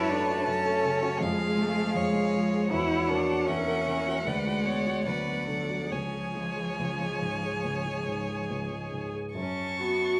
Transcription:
Already playing: F#2 E4 F#4 B4 C#5 A5
0.10 A3 D4
0.30 F#4
0.40 D4
0.46 F#2 C#4 A4 C#5
0.66 A3
0.84 C#3
1.03 F#4
1.20 F2 G#3 G#4 F5
1.39 G#4
1.56 G#3 A3
1.77 G#4
1.94 F2 G#3 C#5
2.13 G#3
2.34 F3
2.53 G#4
2.71 E2 E4 F#4 C#5 F#5
2.91 F#4
3.09 A#3 D4
3.29 F#4
3.46 E2 C#4 A#4 E5
3.68 A#3
3.87 E3 A#4
4.07 F#4
4.26 D2 G#3 B4 D5
4.46 F#4
4.65 B3 C#5
4.86 F#4
5.06 D2 F#3 B4 D5 F#5
5.26 B3
5.47 D3 A4
5.70 F#4
5.91 C#2 F3 G#4 C#5 G#5
6.13 G#4
6.35 G#3
6.57 G#4
6.79 C#2
7.01 G#3
7.21 G#2
7.43 G#4
7.64 C#2
7.85 G#3
8.07 G#2
8.49 C#2
8.71 G#3
8.92 G#2
9.14 G#4
9.35 F#2 C#4 A5 C#6
9.78 B3 F#4

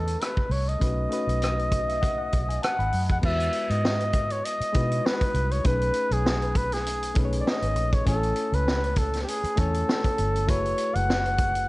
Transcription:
Already playing: E2 A3 C#4 D#4 G#4 A4 B4
0.07 closed hi-hat
0.21 B4, cross-stick, closed hi-hat
0.37 kick
0.50 C2 C#5, open hi-hat
0.68 D#5, closed hi-hat
0.79 B1 A3 C#4 D#4 F#4 B4, kick, closed hi-hat
1.09 A3 C#4 D#4 F#4 B4, closed hi-hat
1.27 B1, closed hi-hat
1.42 cross-stick, closed hi-hat
1.59 closed hi-hat
1.72 D#5, kick, closed hi-hat
1.88 E5, cross-stick, closed hi-hat
2.01 F#5, kick, closed hi-hat
2.18 F#5
2.32 B1, kick, closed hi-hat
2.49 G#5, closed hi-hat
2.62 F#5 A5, cross-stick, closed hi-hat
2.79 G#1 B5, closed hi-hat
2.92 F#2, open hi-hat
3.09 F2 F#5, kick, closed hi-hat
3.22 E2 G#3 B3 E4 F#4 B4 E5, kick, crash
3.40 closed hi-hat
3.53 closed hi-hat
3.70 G#2 D#5, closed hi-hat
3.85 snare
4.00 closed hi-hat
4.13 kick, closed hi-hat
4.30 C#5, closed hi-hat
4.45 D#5, closed hi-hat
4.60 muted fingered electric bass stroke, closed hi-hat
4.73 B2 G#3 D#4 E4 F#4 B4, kick, closed hi-hat
4.92 closed hi-hat
5.06 B4, snare
5.21 kick, closed hi-hat
5.34 C2, closed hi-hat
5.51 C#5, closed hi-hat
5.64 B1 A3 C#4 D#4 G#4 B4, kick, closed hi-hat
5.81 closed hi-hat
5.94 closed hi-hat
6.11 B1 G#4, closed hi-hat
6.26 snare
6.42 closed hi-hat
6.55 B4, kick, closed hi-hat
6.72 G#4, snare, closed hi-hat
6.86 closed hi-hat
7.03 closed hi-hat
7.15 B1 A3 C#4 D#4 G#4 B4, kick, closed hi-hat
7.25 C#5
7.32 closed hi-hat
7.40 D5
7.47 D#5, snare
7.62 G#1, closed hi-hat
7.75 A#1, closed hi-hat
7.93 C#5, kick, closed hi-hat
8.05 A1 A3 C#4 E4 A4 C#5 G#5, kick, closed hi-hat
8.23 closed hi-hat
8.36 closed hi-hat
8.52 C#2 B4, closed hi-hat
8.68 snare
8.84 closed hi-hat
8.96 A4, kick, closed hi-hat
9.13 snare, closed hi-hat
9.23 G4
9.28 G#4, closed hi-hat
9.44 muted fingered electric bass stroke, closed hi-hat
9.56 E2 A3 C#4 E4 A4 G#5, kick, closed hi-hat
9.60 C#5
9.74 closed hi-hat
9.89 snare
10.04 kick, closed hi-hat
10.18 G1, closed hi-hat
10.36 closed hi-hat
10.47 F#1 A3 E4 F#4 G#4 B4 C#5, kick, closed hi-hat
10.66 closed hi-hat
10.78 closed hi-hat
10.95 F#1 F#5, closed hi-hat
11.10 snare
11.26 closed hi-hat
11.38 kick, closed hi-hat
11.55 closed hi-hat

